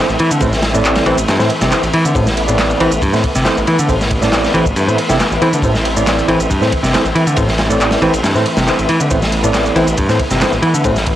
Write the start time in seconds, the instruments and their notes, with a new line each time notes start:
Already playing: tonewheel organ E3 A3 C4
0.09 detuned saw bass A1, shaker
0.19 picked electric bass E3, ride
0.31 picked electric bass D3, shaker
0.40 detuned saw bass A1, picked electric bass A2, tine electric piano C4 E4 A4 C5, kick, ride, shaker
0.53 snare, shaker
0.62 snare, ride
0.74 picked electric bass A2, tine electric piano C4 E4 A4 D5, shaker
0.85 clap, ride, shaker
0.95 snare, ride, shaker
1.06 detuned saw bass A1, picked electric bass E3, tine electric piano C4 E4 A4 C5, ride
1.18 detuned saw bass A1, ride, shaker
1.28 picked electric bass G2, snare, ride, shaker
1.39 picked electric bass A2, tine electric piano C4 E4 A4 C5, snare, shaker
1.49 ride
1.61 detuned saw bass G1, picked electric bass C3, snare, ride, shaker
1.71 tine electric piano C4 E4 A4 C5, snare, clap, shaker
1.83 detuned saw bass A1, ride, shaker
1.93 picked electric bass E3, ride
2.05 picked electric bass D3, shaker
2.15 detuned saw bass A1, picked electric bass A2, tonewheel organ B3, tine electric piano C4 E4 A4 C5, kick, ride, shaker
2.27 snare, shaker
2.37 ride
2.48 picked electric bass A2, tine electric piano C4 E4 A4 D5, shaker
2.58 snare, clap, ride, shaker
2.70 ride, shaker
2.80 detuned saw bass A1, picked electric bass E3, tine electric piano C4 E4 A4 C5, ride
2.92 detuned saw bass A1, shaker
3.02 picked electric bass G2, kick, ride, shaker
3.13 picked electric bass A2, tine electric piano C4 E4 A4 C5, snare, shaker
3.24 kick, ride
3.35 detuned saw bass G1, picked electric bass C3, snare, shaker
3.45 tine electric piano C4 E4 A4 C5, snare, clap, ride, shaker
3.57 detuned saw bass A1, shaker
3.67 picked electric bass E3, ride
3.79 picked electric bass D3, shaker
3.89 detuned saw bass A1, picked electric bass A2, tine electric piano C4 E4 A4 C5, kick, ride, shaker
4.01 snare, shaker
4.10 kick, ride
4.22 picked electric bass A2, tine electric piano C4 E4 A4 D5, snare, shaker
4.32 snare, clap, ride, shaker
4.44 snare, shaker
4.54 detuned saw bass A1, picked electric bass E3, tine electric piano C4 E4 A4 C5, ride
4.66 detuned saw bass A1, kick, shaker
4.76 picked electric bass G2, ride, shaker
4.87 picked electric bass A2, tine electric piano C4 E4 A4 C5, shaker
4.98 ride
5.09 detuned saw bass G1, picked electric bass C3, tine electric piano C4 E4 A4 E5, snare, shaker
5.20 snare, clap, ride, shaker
5.31 detuned saw bass A1, shaker
5.42 picked electric bass E3, tine electric piano C4 E4 A4 C5, ride
5.53 picked electric bass D3, shaker
5.62 detuned saw bass A1, picked electric bass A2, tine electric piano C4 E4 A4 C5, tonewheel organ C4, kick, ride, shaker
5.75 snare, shaker
5.85 ride
5.97 picked electric bass A2, tine electric piano C4 E4 A4 D5, shaker
6.07 snare, clap, ride, shaker
6.19 ride, shaker
6.28 detuned saw bass A1, picked electric bass E3, tine electric piano C4 E4 A4 C5, ride
6.40 detuned saw bass A1, shaker
6.50 picked electric bass G2, kick, ride, shaker
6.61 picked electric bass A2, tine electric piano C4 E4 A4 C5, snare, shaker
6.72 kick, ride
6.83 detuned saw bass G1, picked electric bass C3, snare, shaker
6.94 tine electric piano C4 E4 A4 C5, snare, clap, ride, shaker
7.05 detuned saw bass A1, shaker
7.15 picked electric bass E3, ride
7.27 picked electric bass D3, shaker
7.36 detuned saw bass A1, picked electric bass A2, tine electric piano C4 E4 A4 C5, kick, ride, shaker
7.48 snare, shaker
7.58 snare, ride
7.70 picked electric bass A2, tine electric piano C4 E4 A4 D5, shaker
7.80 clap, ride, shaker
7.91 snare, ride, shaker
8.02 detuned saw bass A1, picked electric bass E3, tine electric piano C4 E4 A4 C5, ride
8.14 detuned saw bass A1, ride, shaker
8.23 picked electric bass G2, snare, ride, shaker
8.35 picked electric bass A2, tine electric piano C4 E4 A4 C5, snare, shaker
8.46 ride
8.57 detuned saw bass G1, picked electric bass C3, snare, ride, shaker
8.67 tine electric piano C4 E4 A4 C5, snare, clap, shaker
8.79 detuned saw bass A1, ride, shaker
8.89 picked electric bass E3, ride
9.00 picked electric bass D3, shaker
9.11 detuned saw bass A1, picked electric bass A2, tonewheel organ B3, tine electric piano C4 E4 A4 C5, kick, ride, shaker
9.22 snare, shaker
9.32 ride
9.44 picked electric bass A2, tine electric piano C4 E4 A4 D5, shaker
9.54 snare, clap, ride, shaker
9.66 ride, shaker
9.76 detuned saw bass A1, picked electric bass E3, tine electric piano C4 E4 A4 C5, ride
9.87 detuned saw bass A1, shaker
9.98 picked electric bass G2, kick, ride, shaker
10.09 picked electric bass A2, tine electric piano C4 E4 A4 C5, snare, shaker
10.19 kick, ride
10.31 detuned saw bass G1, picked electric bass C3, snare, shaker
10.41 tine electric piano C4 E4 A4 C5, snare, clap, ride, shaker
10.52 detuned saw bass A1, shaker
10.62 picked electric bass E3, ride
10.74 picked electric bass D3, shaker
10.84 detuned saw bass A1, picked electric bass A2, tine electric piano C4 E4 A4 C5, kick, ride, shaker
10.96 snare, shaker
11.06 kick, ride